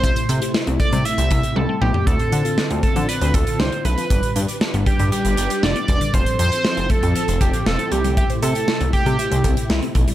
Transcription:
<<
  \new Staff \with { instrumentName = "Analog synth lead" } { \time 4/4 \key c \major \tempo 4 = 118 c''4 r8 d''8 e''4 a'8 g'8 | a'4. a'8 b'8 a'8 c''8 b'8~ | b'4 r8 g'8 g'4 d''8 d''8 | c''8 c''4 a'4 g'8 a'8 g'8 |
g'8 a'4 g'4. r4 | }
  \new Staff \with { instrumentName = "Synth arpeggio sound" } { \time 4/4 \key c \major e''16 c''16 a'16 g'16 e'16 c'16 a16 g16 e''16 c''16 a'16 g'16 e'16 c'16 a16 g16 | d''16 c''16 a'16 f'16 d'16 c'16 a16 f16 d''16 c''16 a'16 f'16 d'16 c'16 a16 f16 | d'''16 b''16 g''16 d''16 d'16 b16 g16 d16 d'''16 b''16 g''16 d''16 d'16 b16 g16 d16 | f'''16 c'''16 a''16 f''16 f'16 c'16 a16 f16 f'''16 c'''16 a''16 f''16 f'16 c'16 a16 g16 |
e''16 c''16 a'16 g'16 e'16 c'16 a16 g16 e''16 c''16 a'16 g'16 e'16 c'16 a16 g16 | }
  \new Staff \with { instrumentName = "String machine" } { \time 4/4 \key c \major <c a e'>1 | <d c' f'>1 | <g d' b'>1 | <f c' a'>2.~ <f c' a'>8 <c a e'>8~ |
<c a e'>1 | }
  \new Staff \with { instrumentName = "Analog synth bass" } { \clef bass \time 4/4 \key c \major c,16 r16 c16 r8 c,16 r16 c16 r16 c,16 c,16 r16 c,16 r16 b,,16 r16 | d,16 r16 d16 r8 d,16 r16 d16 r16 d,16 d,16 r16 c,16 r16 b,,16 r16 | g,,16 r16 g,16 r8 g,,16 r16 g,16 r16 g,,16 g,,16 r16 f,,16 r16 e,,16 r16 | f,,16 r16 f,16 r8 f,,16 r16 f,16 r16 f,,16 f,,16 r16 e,,16 r16 c,8~ |
c,16 r16 c16 r8 c,16 r16 c16 r16 c,16 c,16 r16 c,16 r16 b,,16 r16 | }
  \new DrumStaff \with { instrumentName = "Drums" } \drummode { \time 4/4 <hh bd>16 hh16 hh16 hh16 sn16 hh16 <hh bd>16 hh16 hh16 hh16 <hh bd>16 hh16 tommh8 toml16 tomfh16 | <hh bd>16 hh16 hh16 hh16 sn16 hh16 <hh bd>16 hh16 hh16 hh16 <hh bd>16 hh16 sn16 hh16 hh16 hh16 | <hh bd>16 hh16 hh16 hh16 sn16 hh16 <hh bd>16 hh16 hh16 hh16 hh16 hh16 sn16 hh16 <hh bd>16 hh16 | <hh bd>16 hh16 hh16 hh16 sn16 hh16 <hh bd>16 hh16 hh16 hh16 <hh bd>16 hh16 sn16 hh16 hh16 hh16 |
<hh bd>16 hh16 hh16 hh16 sn16 hh16 <hh bd>16 hh16 hh16 hh16 <hh bd>16 hh16 sn16 hh16 <hh bd>16 hh16 | }
>>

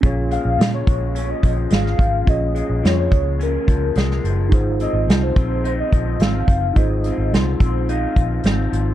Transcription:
<<
  \new Staff \with { instrumentName = "Soft synth lead" } { \time 4/4 \key bes \minor \tempo 4 = 107 r8 f''8. des''8. des''16 ees''8. f''4 | ees''4 des''16 des''8. bes'4. r8 | r8 ees''8. c''8. c''16 ees''8. f''4 | ees''4 c''16 c''8. f''4. r8 | }
  \new Staff \with { instrumentName = "Tine electric piano" } { \time 4/4 \key bes \minor <des' f' aes' des''>1 | <des' f' aes' des''>1 | <ees' f' aes' c''>1 | <ees' f' aes' c''>1 | }
  \new Staff \with { instrumentName = "Clean electric guitar" } { \clef bass \time 4/4 \key bes \minor bes,8 aes8 f8 aes8 des'8 f8 aes8 f8 | bes,8 aes8 f8 aes8 des'8 f8 aes8 f8 | aes,8 c'8 f8 c'8 ees'8 f8 c'8 f8 | aes,8 c'8 f8 c'8 ees'8 f8 c'8 f8 | }
  \new Staff \with { instrumentName = "Fingered electric bass" } { \clef bass \time 4/4 \key bes \minor bes,,8. bes,,16 bes,8 bes,,4 bes,,8 aes,,8 aes,,8 | bes,,8. bes,,16 f,8 des,4 des,8 c,8 ges,,8 | aes,,8. aes,,16 c,8 bes,,4 bes,,8 aes,,8 ges,,8 | aes,,8. aes,,16 c,8 bes,,4 bes,,8 aes,,8 aes,,8 | }
  \new DrumStaff \with { instrumentName = "Drums" } \drummode { \time 4/4 <hh bd>8 hh8 <hh sn>8 <hh bd>8 hh8 <hh bd>8 <hh sn>16 sn16 <hh bd>8 | <hh bd>8 hh8 <hh sn>8 <hh bd>8 hh8 <hh bd>8 <hh sn>16 sn16 hh8 | <hh bd>8 hh8 <hh sn>8 <hh bd>8 hh8 <hh bd>8 <hh sn>8 <hh bd>8 | <hh bd>8 hh8 <hh sn>8 <hh bd>8 hh8 <hh bd>8 <hh sn>8 hh8 | }
>>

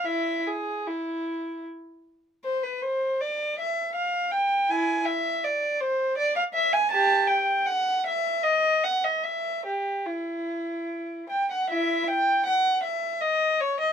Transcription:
\new Staff \with { instrumentName = "Violin" } { \time 3/4 \key e \phrygian \tempo 4 = 78 <e' e''>8 gis'8 e'4 r4 | c''16 b'16 c''8 d''8 e''8 f''8 g''8 | <e' gis''>8 e''8 d''8 c''8 d''16 f''16 e''16 gis''16 | \key e \minor <g' a''>8 g''8 fis''8 e''8 dis''8 fis''16 dis''16 |
e''8 g'8 e'4. g''16 fis''16 | <e' e''>8 g''8 fis''8 e''8 dis''8 cis''16 dis''16 | }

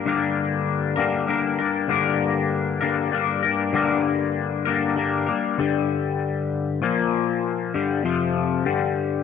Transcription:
\new Staff \with { instrumentName = "Clean electric guitar" } { \clef bass \time 6/8 \key g \minor \tempo 4. = 65 <g, d g bes d' bes'>4. <g, d g bes d' bes'>8 <g bes d' bes'>8 <g bes d' bes'>8 | <g, d g bes d' bes'>4. <g, d g bes d' bes'>8 <g bes d' bes'>8 <g bes d' bes'>8 | <g, d g bes d' bes'>4. <g, d g bes d' bes'>8 <g bes d' bes'>8 <g bes d' bes'>8 | <g, d g>2 <bes, f bes>4~ |
<bes, f bes>8 <g, d g>8 <f, c f>4 <g, d g>4 | }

